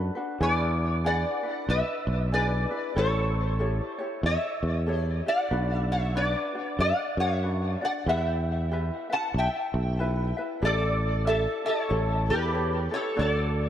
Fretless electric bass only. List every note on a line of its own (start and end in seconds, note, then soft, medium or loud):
0.41 1.24 E2 medium
1.69 1.81 B1 loud
2.07 2.65 B1 medium
2.97 3.79 A1 medium
4.23 4.36 E2 medium
4.63 5.20 E2 medium
5.51 6.34 B1 medium
6.79 6.91 F#2 medium
7.17 7.75 F#2 medium
8.06 8.90 E2 medium
9.34 9.47 B1 medium
9.74 10.32 B1 medium
10.63 11.46 A1 medium
11.91 12.31 A1 medium
12.29 12.87 E2 medium
13.19 13.69 D2 medium